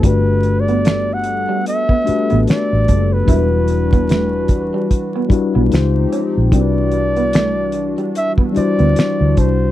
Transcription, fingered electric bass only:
X:1
M:4/4
L:1/16
Q:"Swing 16ths" 1/4=74
K:G
V:1 name="Fingered electric bass" clef=bass
G,,,6- G,,, z4 A,,, z A,,, F,,,2 | E,,,6- E,,, z4 B,,, ^C,,2 z _B,,, | C,,6- C,, z4 D,, z D,, C,,2 |]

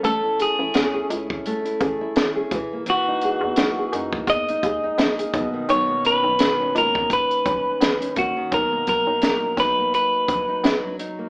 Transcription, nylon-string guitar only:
X:1
M:4/4
L:1/16
Q:"Swing 16ths" 1/4=85
K:B
V:1 name="Nylon-string guitar"
[=A,C] E G E C G E C A, E G E C G E, ^A, | E, D G D A, G D A,2 D G D A, G B,, D, | B,, A, C2 D, C A, D,3 C2 D, C A, D, | B,, A, F, D A, F, D A,2 z F, D2 F, D A, |]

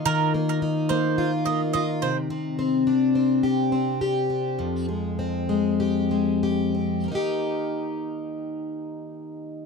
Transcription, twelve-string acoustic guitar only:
X:1
M:4/4
L:1/8
Q:"Swing 16ths" 1/4=102
K:Eb
V:1 name="Twelve-string acoustic guitar"
[E,B,EF] B, E B, F B, F C, | C, C D C G C G D | F,, A, C A, G A, G C | [E,B,EG]8 |]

